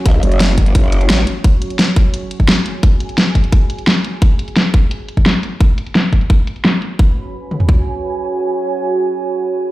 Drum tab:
HH |x-xxx-xxx-xxx-x-|x-xxx-x-x-x-x-x-|x-xxx-xxx-xxx-x-|x-xxx-x-x-x-x-x-|
SD |----o-------o---|----o-------o---|----o-------o---|----o-------o---|
T2 |----------------|----------------|----------------|----------------|
FT |----------------|----------------|----------------|----------------|
BD |o-----o-o-------|o-----o----o----|o-----o-o-------|o-----o----o----|

HH |x-xxx-xxx-xxx-x-|----------------|----------------|
SD |----o-------o---|----------------|----------------|
T2 |----------------|------o---------|----------------|
FT |----------------|-------o--------|----------------|
BD |o-----o-o-------|o-------o-------|----------------|